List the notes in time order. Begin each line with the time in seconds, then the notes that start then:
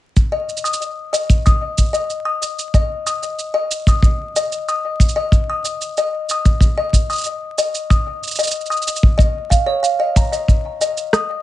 0.17 kick, shaker
0.32 D#5
0.49 shaker
0.57 shaker
0.64 D#6, shaker
0.73 shaker
0.82 shaker
1.13 D#5, shaker
1.30 kick, shaker
1.46 D#6, kick, shaker
1.78 kick, shaker
1.93 D#5, shaker
2.10 shaker
2.25 D#6
2.42 shaker
2.59 shaker
2.74 D#5, kick, shaker
3.06 D#6, shaker
3.23 shaker
3.39 shaker
3.54 D#5
3.71 shaker
3.87 D#6, kick, shaker
4.03 kick, shaker
4.36 D#5, shaker
4.52 shaker
4.68 D#6, shaker
5.00 kick, shaker
5.09 shaker
5.16 D#5
5.32 kick, shaker
5.50 D#6
5.65 shaker
5.81 shaker
5.97 D#5, shaker
6.29 D#6, shaker
6.45 kick, shaker
6.60 kick, shaker
6.77 D#5
6.93 kick, shaker
7.10 D#6, shaker
7.13 shaker
7.15 shaker
7.18 shaker
7.21 shaker
7.24 shaker
7.26 shaker
7.58 D#5, shaker
7.75 shaker
7.90 D#6, kick, shaker
8.23 shaker
8.27 shaker
8.31 shaker
8.35 D#5, shaker
8.39 shaker
8.43 shaker
8.47 shaker
8.51 shaker
8.55 shaker
8.61 shaker
8.66 shaker
8.70 D#6, shaker
8.77 shaker
8.82 shaker
8.88 shaker
8.96 shaker
9.03 kick
9.18 D#5, kick, shaker
9.50 F5, kick, shaker
9.66 C#5
9.83 F5, shaker
10.00 D#5
10.16 A#5, kick, shaker
10.32 D#5, shaker
10.48 kick, shaker
10.81 D#5, shaker
10.97 shaker
11.13 D#6, cross-stick, shaker